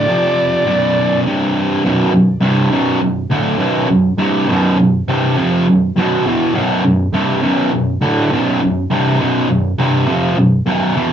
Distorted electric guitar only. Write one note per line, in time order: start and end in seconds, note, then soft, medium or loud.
0.07 0.64 F2 medium
0.07 0.64 C3 medium
0.07 0.65 F3 medium
0.65 1.23 B1 medium
0.65 1.23 F#2 medium
0.65 1.24 B2 medium
1.26 1.83 C2 medium
1.26 1.83 G2 medium
1.26 1.83 C3 loud
1.85 2.11 B1 medium
1.85 2.11 F#2 loud
1.85 2.12 B2 loud
2.12 2.36 B1 medium
2.12 2.36 F#2 medium
2.41 2.69 C2 medium
2.41 2.70 G2 medium
2.41 2.70 C3 loud
2.71 2.99 B1 medium
2.71 2.99 F#2 loud
2.71 3.00 B2 loud
3.01 3.24 B1 medium
3.01 3.25 F#2 medium
3.30 3.58 D2 medium
3.30 3.59 A2 medium
3.30 3.59 D3 medium
3.58 3.87 B1 loud
3.58 3.88 F#2 loud
3.58 3.88 B2 loud
3.89 4.12 B1 medium
3.89 4.13 F#2 medium
4.18 4.47 C2 loud
4.18 4.47 G2 loud
4.18 4.47 C3 loud
4.48 4.76 B1 loud
4.48 4.77 F#2 loud
4.48 4.77 B2 loud
4.79 5.01 B1 medium
4.79 5.01 F#2 medium
5.08 5.36 C2 medium
5.08 5.36 G2 medium
5.08 5.36 C3 loud
5.37 5.65 F2 loud
5.37 5.66 C3 loud
5.37 5.66 F3 loud
5.67 5.90 B1 medium
5.67 5.90 F#2 medium
5.96 6.24 B1 medium
5.96 6.25 F#2 medium
5.96 6.25 B2 loud
6.26 6.54 E2 medium
6.26 6.54 B2 medium
6.26 6.54 E3 medium
6.54 6.82 B1 loud
6.54 6.83 F#2 loud
6.54 6.83 B2 loud
6.84 7.07 B1 medium
6.84 7.07 F#2 medium
7.13 7.41 C2 medium
7.13 7.41 G2 loud
7.13 7.42 C3 loud
7.42 7.71 B1 loud
7.42 7.71 F#2 loud
7.42 7.71 B2 loud
7.72 7.96 B1 medium
7.72 7.96 F#2 medium
8.01 8.30 D2 medium
8.01 8.30 A2 medium
8.01 8.30 D3 loud
8.32 8.60 B1 loud
8.32 8.60 F#2 loud
8.32 8.60 B2 loud
8.63 8.85 B1 medium
8.63 8.85 F#2 medium
8.90 9.19 C2 loud
8.90 9.19 G2 loud
8.90 9.19 C3 loud
9.19 9.48 B1 loud
9.19 9.48 F#2 loud
9.19 9.48 B2 loud
9.49 9.72 B1 medium
9.49 9.73 F#2 medium
9.79 10.07 C2 loud
9.79 10.07 G2 loud
9.79 10.06 C3 loud
10.08 10.36 F2 loud
10.08 10.36 C3 loud
10.08 10.37 F3 loud
10.37 10.60 B1 medium
10.37 10.61 F#2 medium
10.66 10.95 B1 loud
10.66 10.95 F#2 medium
10.66 10.95 B2 loud
10.96 11.13 E2 medium
10.96 11.13 B2 medium
10.96 11.13 E3 loud